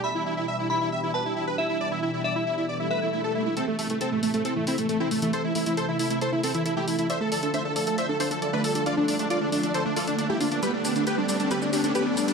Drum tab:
HH |----------------|----------------|x-oxx-oxx-oxx-ox|x-oxx-oxx-oxx-ox|
SH |----------------|----------------|----------------|----------------|

HH |x-oxx-oxx-oxx-ox|x-oxx-oxx-oxx-ox|x-oxx-oxx-oxx-ox|
SH |----------------|----------------|x-xxx-xxxxxxx-xx|